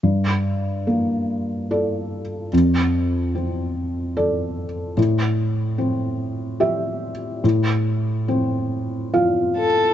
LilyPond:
<<
  \new Staff \with { instrumentName = "Violin" } { \time 3/4 \key g \dorian \tempo 4 = 73 r2. | r2. | r2. | r2 r8 a'8 | }
  \new Staff \with { instrumentName = "Felt piano" } { \time 3/4 \key g \dorian g,4 bes4 <a' d''>4 | f,4 c'4 <a' d''>4 | a,4 c'4 <g' e''>4 | a,4 c'4 <f' f''>4 | }
>>